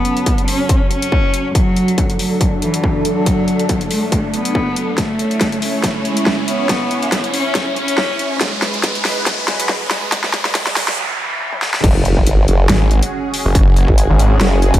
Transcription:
Already playing: analog synth pad F#3 C#4 A5, cello B3, riser
0.05 closed hi-hat
0.17 closed hi-hat
0.26 kick, closed hi-hat
0.38 closed hi-hat
0.48 cello C#4, open hi-hat
0.69 kick, closed hi-hat
0.91 cello C#4, closed hi-hat
1.02 closed hi-hat
1.12 kick
1.34 closed hi-hat
1.55 cello F#3, analog synth pad D4 A4, kick, closed hi-hat
1.76 closed hi-hat
1.88 closed hi-hat
1.98 kick, closed hi-hat
2.10 closed hi-hat
2.19 cello F#3, open hi-hat
2.41 kick, closed hi-hat
2.62 cello E3, closed hi-hat
2.74 closed hi-hat
2.84 kick
3.05 cello F#3, closed hi-hat
3.26 kick, closed hi-hat
3.48 closed hi-hat
3.59 closed hi-hat
3.69 kick, closed hi-hat
3.81 closed hi-hat
3.91 cello A3, open hi-hat
4.12 kick, closed hi-hat
4.34 cello B3, closed hi-hat
4.45 closed hi-hat
4.55 kick
4.76 closed hi-hat
4.98 cello A3, analog synth pad C#4 E4 C#5, kick, snare, closed hi-hat
5.19 closed hi-hat
5.31 closed hi-hat
5.41 kick, snare, closed hi-hat
5.52 closed hi-hat
5.62 cello A3, open hi-hat
5.84 kick, snare, closed hi-hat
6.05 cello G#3, closed hi-hat
6.17 closed hi-hat
6.26 kick, snare
6.48 cello B3, closed hi-hat
6.69 kick, snare, closed hi-hat
6.91 closed hi-hat
7.03 closed hi-hat
7.12 kick, snare, closed hi-hat
7.24 closed hi-hat
7.34 cello C#4, open hi-hat
7.55 kick, snare, closed hi-hat
7.76 cello C#4, closed hi-hat
7.88 closed hi-hat
7.98 kick, snare
8.19 closed hi-hat
8.41 cello G#3, analog synth pad G#3 B4, kick, snare, closed hi-hat
8.62 snare, closed hi-hat
8.74 closed hi-hat
8.84 kick, snare, closed hi-hat
8.95 closed hi-hat
9.05 cello G#3, snare, open hi-hat
9.26 kick, snare, closed hi-hat
9.48 cello F#3, snare, closed hi-hat
9.60 closed hi-hat
9.69 kick, snare
9.91 cello G#3, snare, closed hi-hat
10.12 kick, snare, closed hi-hat, noise sweep
10.24 snare
10.34 snare, closed hi-hat
10.45 snare, closed hi-hat
10.55 kick, snare, closed hi-hat
10.67 snare, closed hi-hat
10.76 cello F#3, snare, open hi-hat
10.88 snare
11.19 cello E3
11.53 high tom
11.62 snare
11.74 snare
11.84 wobble bass F#1, analog synth pad C#4 F#4 G#4, kick, closed hi-hat, crash, impact
12.05 closed hi-hat
12.17 kick
12.26 wobble bass G#1, closed hi-hat
12.48 wobble bass F#1, closed hi-hat
12.69 detuned saw bass G#1, snare, closed hi-hat
12.91 closed hi-hat
13.03 closed hi-hat
13.34 open hi-hat
13.45 detuned saw bass F#1
13.55 kick, closed hi-hat
13.77 closed hi-hat
13.88 wobble bass G#1, kick
13.98 closed hi-hat
14.10 detuned saw bass G#1
14.19 closed hi-hat
14.41 wobble bass F#1, snare, closed hi-hat
14.62 closed hi-hat
14.74 wobble bass F#1, kick, closed hi-hat

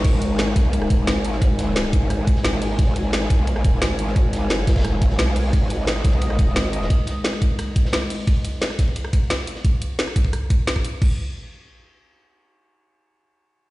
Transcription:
Already playing: analog synth pad G#3 D#4 A#4
0.05 wobble bass G#1, analog synth pad G#5, kick, closed hi-hat, crash, ride
0.22 closed hi-hat, ride
0.38 snare, closed hi-hat, ride
0.47 cross-stick
0.56 wobble bass B1, kick, snare, closed hi-hat, ride
0.65 ride
0.73 closed hi-hat, ride
0.81 cross-stick, ride
0.90 wobble bass D#1, kick, closed hi-hat, ride
1.07 wobble bass G#1, snare, closed hi-hat, ride
1.25 closed hi-hat, ride
1.32 snare
1.42 kick, closed hi-hat, ride
1.59 snare, closed hi-hat, ride
1.76 snare, closed hi-hat, ride
1.85 cross-stick
1.93 wobble bass F#1, kick, closed hi-hat, ride
2.10 wobble bass G#1, cross-stick, closed hi-hat, ride
2.27 kick, closed hi-hat, ride
2.36 snare
2.44 wobble bass G#1, snare, closed hi-hat, ride
2.53 cross-stick, ride
2.62 closed hi-hat, open hi-hat
2.79 wobble bass G#1, kick, closed hi-hat, ride
2.96 closed hi-hat, ride
3.13 snare, closed hi-hat, ride
3.22 cross-stick
3.30 wobble bass B1, kick, closed hi-hat, ride
3.39 ride
3.47 closed hi-hat, ride
3.56 cross-stick, ride
3.64 wobble bass D#1, kick, closed hi-hat, ride
3.82 wobble bass G#1, snare, closed hi-hat, ride
3.99 closed hi-hat, ride
4.07 snare
4.16 kick, closed hi-hat, ride
4.33 snare, closed hi-hat, ride
4.42 wobble bass G1
4.50 snare, closed hi-hat, ride
4.59 cross-stick
4.67 wobble bass F#1, kick, snare, closed hi-hat, ride
4.76 kick, snare, ride
4.80 snare, ride
4.84 wobble bass F#1, cross-stick, closed hi-hat, ride
5.02 kick, closed hi-hat, ride
5.10 snare
5.18 wobble bass B1, snare, closed hi-hat, ride
5.27 cross-stick, ride
5.36 closed hi-hat, open hi-hat
5.53 wobble bass G#1, analog synth pad D#5, kick, closed hi-hat, ride
5.70 closed hi-hat, ride
5.87 snare, closed hi-hat, ride
5.96 cross-stick
6.04 wobble bass B1, kick, snare, closed hi-hat, ride
6.13 ride
6.21 closed hi-hat, ride
6.30 cross-stick, ride
6.39 wobble bass D#1, kick, closed hi-hat, ride
6.56 wobble bass G#1, snare, closed hi-hat, ride
6.73 closed hi-hat, ride
6.82 snare
6.90 kick, closed hi-hat, ride
7.07 snare, closed hi-hat, ride
7.24 snare, closed hi-hat, ride
7.33 cross-stick
7.42 kick, closed hi-hat, ride
7.59 cross-stick, closed hi-hat, ride
7.76 kick, closed hi-hat, ride
7.85 snare
7.93 snare, closed hi-hat, ride
8.01 cross-stick, ride
8.10 closed hi-hat, open hi-hat
8.27 kick, closed hi-hat, ride
8.45 closed hi-hat, ride
8.61 snare, closed hi-hat, ride
8.70 cross-stick
8.79 kick, snare, closed hi-hat, ride
8.88 ride
8.96 closed hi-hat, ride
9.04 cross-stick, ride
9.13 kick, closed hi-hat, ride
9.30 snare, closed hi-hat, ride
9.47 closed hi-hat, ride
9.56 snare
9.65 kick, closed hi-hat
9.82 closed hi-hat
9.99 snare, closed hi-hat
10.07 cross-stick
10.16 kick, closed hi-hat
10.25 kick
10.33 cross-stick, closed hi-hat
10.50 kick, closed hi-hat
10.67 snare, closed hi-hat
10.76 kick, cross-stick
10.85 closed hi-hat
11.02 kick, crash

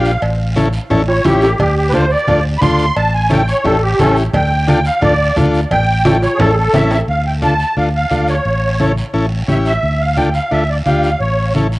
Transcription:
Already playing: fingered electric bass A#1, transistor combo organ D4 F4 G4, accordion F5
0.05 short guiro
0.22 fingered electric bass A1, cowbell, high conga, long guiro
0.56 transistor combo organ C#4 E4 A4, cowbell, high conga, short guiro
0.73 short guiro
0.90 fingered electric bass A1, transistor combo organ C#4 E4 A4, cowbell, high conga, low conga, long guiro
1.08 accordion C#5, high timbale
1.24 fingered electric bass A1, transistor combo organ C#4 E4 G4, accordion G4, cowbell, high conga, low conga, high timbale, short guiro
1.41 accordion G4, low timbale, short guiro
1.58 fingered electric bass D2, accordion G4, cowbell, high conga, low conga, long guiro
1.77 accordion G4
1.90 accordion B4, cowbell, high conga, short guiro
1.94 transistor combo organ D4 F4 A4, accordion C5
2.11 accordion D5, short guiro
2.28 fingered electric bass D2, transistor combo organ D4 F4 A4, cowbell, high conga, low conga, long guiro
2.58 transistor combo organ D4 F4, accordion B5, short guiro
2.62 fingered electric bass D2, transistor combo organ A4, accordion C6, cowbell, high conga, low conga
2.78 short guiro
2.96 fingered electric bass A1, accordion A5, cowbell, high conga, long guiro
3.14 accordion G#5
3.30 transistor combo organ C#4 E4 A4, accordion G5, cowbell, high conga, short guiro
3.48 accordion C#5, short guiro
3.64 fingered electric bass A1, transistor combo organ C#4 E4 G4, accordion A4, cowbell, high conga, low conga, long guiro
3.82 accordion G4
3.99 fingered electric bass A1, transistor combo organ C#4 E4 G4, accordion C#4 A4, cowbell, high conga, low conga, low timbale, short guiro
4.16 short guiro
4.33 fingered electric bass D2, accordion G5, cowbell, high conga, low conga, long guiro
4.67 transistor combo organ D4 F4 A4, accordion G5, cowbell, high conga, short guiro
4.85 accordion F5, short guiro
5.01 fingered electric bass D2, transistor combo organ D4 F4 A4, accordion D5, cowbell, high conga, low conga, long guiro
5.36 fingered electric bass D2, transistor combo organ D4 F4 A4, cowbell, high conga, low conga, short guiro
5.54 short guiro
5.71 fingered electric bass A1, accordion G5, cowbell, high conga, low conga, long guiro
6.05 transistor combo organ C#4 E4 A4, cowbell, high conga, high timbale, short guiro
6.22 accordion C#5, high timbale, short guiro
6.35 accordion G#4
6.39 fingered electric bass A1, transistor combo organ C#4 E4 A4, accordion A4, cowbell, high conga, low conga, low timbale, long guiro
6.53 accordion G#4
6.58 accordion A4
6.73 fingered electric bass A1, transistor combo organ C#4 E4 A4, accordion E5, cowbell, high conga, low timbale, short guiro
6.91 accordion E5, low timbale, short guiro
7.08 fingered electric bass D2, accordion F5, high conga, long guiro
7.27 accordion G5
7.42 transistor combo organ D4 F4 A4, accordion A5, high conga, short guiro
7.59 short guiro
7.77 fingered electric bass D2, transistor combo organ D4 F4 A4, accordion F5, high conga, long guiro
7.96 accordion F5
8.11 fingered electric bass D2, transistor combo organ D4 F4 A4, high conga, short guiro
8.28 accordion C#5, short guiro
8.45 fingered electric bass A1, high conga, long guiro
8.80 transistor combo organ C#4 E4 A4, high conga, short guiro
8.97 short guiro
9.13 fingered electric bass A1, transistor combo organ C#4 E4 A4, high conga, long guiro
9.48 fingered electric bass A1, transistor combo organ C#4 E4 G4, accordion E5, high conga, short guiro
9.65 accordion E5, short guiro
9.83 fingered electric bass D2, high conga, long guiro
10.01 accordion F5
10.17 transistor combo organ D4 F4 A4, accordion G5, high conga, short guiro
10.34 accordion F5, short guiro
10.51 fingered electric bass D2, transistor combo organ D4 F4 A4, accordion E5, high conga, long guiro
10.70 accordion D5
10.86 fingered electric bass D2, transistor combo organ D4 F4 G4, accordion F5, high conga, short guiro
11.03 accordion F5, short guiro
11.20 fingered electric bass A1, accordion C#5, high conga, long guiro
11.55 transistor combo organ C#4 E4 A4, high conga, short guiro
11.72 short guiro

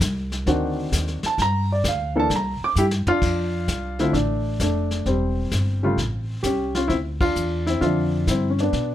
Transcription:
0.01 upright bass C2, kick, snare, hi-hat pedal
0.32 snare
0.46 upright bass D2, grand piano D#3 C4 D4 F#4, brush sweep, kick, snare
0.92 upright bass D#2, kick, snare, hi-hat pedal
1.08 snare
1.23 grand piano A5, muted upright bass stroke, snare
1.38 upright bass G2, grand piano A#5, brush sweep, kick, snare
1.72 grand piano D5
1.84 upright bass D2, kick, snare, hi-hat pedal
1.88 grand piano F5
2.16 grand piano E3 A#3 D4 A4
2.20 grand piano A5
2.30 upright bass C2, brush sweep, kick, snare
2.36 grand piano A#5
2.61 grand piano D6, muted upright bass stroke
2.76 upright bass G2, grand piano E4 G4, hi-hat pedal
2.91 snare
3.06 grand piano D4 F4, muted upright bass stroke, floor tom
3.22 upright bass F2, brush sweep, kick, snare, crash
3.68 upright bass C2, kick, snare, hi-hat pedal
3.99 grand piano D3 A3 C4 E4 F4, snare
4.13 upright bass A1, grand piano A3 D4, brush sweep, kick, snare
4.60 upright bass F1, grand piano A3 D4, kick, snare, hi-hat pedal
4.91 snare
5.06 upright bass E1, grand piano G3 C4, brush sweep, kick, snare
5.51 upright bass G1, kick, snare, hi-hat pedal
5.83 grand piano C#3 G3 A3 F4
5.97 upright bass A1, brush sweep, kick, snare
6.43 upright bass C2, grand piano C#4 G4, kick, snare, hi-hat pedal
6.75 grand piano C#4 F4, snare
6.88 upright bass D2, grand piano C4 E4, brush sweep, kick, snare
7.21 grand piano D4 F4, kick, ride
7.36 upright bass E2, hi-hat pedal
7.67 grand piano C4 E4, snare
7.81 upright bass F2, grand piano D3 F3 C4 D4 F4 E5, brush sweep, kick, snare
8.27 upright bass G2, grand piano C4 E4, kick, snare, hi-hat pedal
8.50 grand piano C#4
8.58 grand piano B3 D4, snare
8.73 upright bass B2, brush sweep, kick, snare

